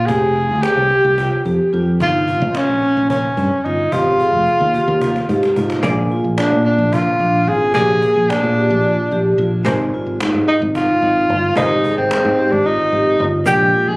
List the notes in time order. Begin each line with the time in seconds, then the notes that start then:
0.06 F1 G4 G#4, cajon bass
0.35 G#4, cajon slap
0.49 D2
0.63 G4, cajon slap
0.77 C2
0.91 G4, cajon slap
1.05 C2
1.18 F4, cajon bass
1.45 F2 G4, cajon bass
1.73 F2 F4, cajon slap
2.00 G1 D#4 F4, cajon bass
2.28 F4, cajon bass
2.42 C#2
2.55 C#4, cajon slap
2.69 A#1
2.83 C#4, cajon slap
2.97 A#1
3.10 C#4, cajon bass
3.37 G2 C#4, cajon bass
3.65 G1 D#4 F4, cajon slap
3.92 G#1 F4 G4, cajon bass
4.20 G#4, cajon bass, cajon slap
4.33 F1
4.47 cajon bass, cajon slap
4.60 D#2
4.74 G4, cajon bass
4.88 D#2
5.01 F4, cajon bass
5.16 cajon slap
5.29 G#2 G4, cajon bass
5.43 cajon slap
5.56 G#2 F4, cajon bass
5.70 cajon slap
5.83 A#1 A#3 D4 G#4 D5, cajon bass
6.10 F4, cajon slap
6.24 A#1
6.38 D4, cajon slap
6.52 A#2
6.65 D4, cajon slap
6.78 A#1
6.92 F4, cajon bass, cajon slap
7.19 A#1 D4, cajon slap
7.47 G#1 F4 G#4, cajon slap
7.74 A#1 A#3 G4 G#4 D5, cajon bass
8.02 G#4, cajon bass
8.16 A#1
8.30 D4, cajon slap
8.43 A#2
8.57 G4, cajon slap
8.70 A#1
8.84 F4, cajon slap
9.11 A#1 G4, cajon slap
9.38 A#1 F4, cajon slap
9.65 G#1 G#3 D#4 G4 A#4 C5, cajon bass
9.94 F4, cajon slap
10.06 G#1
10.20 D#4, cajon slap
10.34 G#2
10.48 D#4, cajon slap
10.62 G#1
10.75 F4, cajon bass, cajon slap
11.02 G#1 D#4, cajon slap
11.29 G1, cajon slap
11.56 G#1 G#3 D#4 G4 A#4 C5, cajon bass
11.84 G#4, cajon bass
11.97 G#1 C4
12.11 cajon slap
12.25 G#2
12.39 G4, cajon slap
12.51 G#1 D4
12.66 D#4 F4, cajon slap
12.92 G#1 G4
13.20 G1 F4, cajon slap
13.46 A#1 G#3 A#3 D4 G4 D5, cajon bass, shaker
13.74 F4, cajon slap
13.87 A#1 G#4